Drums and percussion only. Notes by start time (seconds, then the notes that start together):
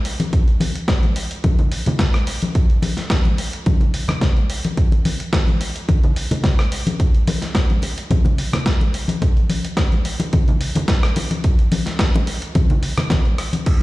0.05 open hi-hat
0.20 closed hi-hat, high conga
0.33 kick, closed hi-hat
0.48 closed hi-hat
0.60 open hi-hat, high conga
0.76 closed hi-hat
0.88 kick, cross-stick, snare, closed hi-hat
1.03 closed hi-hat, high conga
1.16 open hi-hat
1.31 closed hi-hat
1.44 kick, closed hi-hat, high conga
1.59 closed hi-hat, low conga
1.72 open hi-hat
1.86 closed hi-hat, high conga, low conga
1.99 kick, snare, closed hi-hat
2.14 cross-stick, closed hi-hat
2.27 open hi-hat
2.42 closed hi-hat, high conga
2.55 kick, closed hi-hat
2.70 closed hi-hat
2.82 open hi-hat, high conga
2.97 snare, closed hi-hat
3.10 kick, cross-stick, snare, closed hi-hat
3.25 closed hi-hat, high conga
3.38 open hi-hat
3.53 closed hi-hat
3.66 kick, closed hi-hat, high conga
3.81 closed hi-hat, low conga
3.94 open hi-hat
4.08 cross-stick, closed hi-hat, high conga, low conga
4.21 kick, snare, closed hi-hat
4.37 closed hi-hat
4.50 open hi-hat
4.65 closed hi-hat, high conga
4.77 kick, closed hi-hat
4.92 closed hi-hat, muted conga
5.05 open hi-hat, high conga
5.20 closed hi-hat
5.33 kick, cross-stick, snare, closed hi-hat, muted conga
5.47 closed hi-hat, high conga
5.61 open hi-hat
5.76 closed hi-hat
5.89 kick, closed hi-hat, muted conga, high conga
6.03 closed hi-hat, low conga
6.16 open hi-hat
6.31 closed hi-hat, muted conga, high conga, low conga
6.44 kick, snare, closed hi-hat
6.59 cross-stick, closed hi-hat
6.72 open hi-hat
6.87 closed hi-hat, muted conga, high conga
7.00 kick, closed hi-hat
7.15 closed hi-hat
7.27 open hi-hat, muted conga, high conga
7.42 snare, closed hi-hat
7.55 kick, cross-stick, snare, closed hi-hat
7.70 closed hi-hat, high conga
7.82 open hi-hat, muted conga
7.98 closed hi-hat
8.10 kick, closed hi-hat, high conga
8.25 closed hi-hat, muted conga, low conga
8.38 open hi-hat
8.53 cross-stick, closed hi-hat, high conga, low conga
8.66 kick, snare, closed hi-hat
8.81 closed hi-hat, muted conga
8.94 open hi-hat
9.08 closed hi-hat, high conga
9.22 kick, closed hi-hat, muted conga
9.37 closed hi-hat
9.50 open hi-hat, high conga
9.65 closed hi-hat
9.77 kick, cross-stick, snare, closed hi-hat, muted conga
9.92 closed hi-hat, high conga
10.05 open hi-hat
10.20 closed hi-hat, muted conga
10.33 kick, closed hi-hat, high conga
10.48 closed hi-hat, low conga
10.61 open hi-hat
10.75 closed hi-hat, muted conga, high conga, low conga
10.88 kick, snare, closed hi-hat
11.03 cross-stick, closed hi-hat
11.16 open hi-hat, muted conga
11.31 closed hi-hat, high conga
11.44 kick, closed hi-hat
11.59 closed hi-hat
11.72 open hi-hat, muted conga, high conga
11.86 snare, closed hi-hat
11.99 kick, cross-stick, snare, closed hi-hat
12.14 closed hi-hat, muted conga, high conga
12.27 open hi-hat
12.42 closed hi-hat
12.55 kick, closed hi-hat, high conga
12.70 closed hi-hat, muted conga, low conga
12.83 open hi-hat
12.98 cross-stick, closed hi-hat, high conga, low conga
13.10 kick, snare, closed hi-hat, muted conga
13.25 closed hi-hat
13.38 cross-stick, open hi-hat
13.53 closed hi-hat, high conga
13.66 kick, closed hi-hat, crash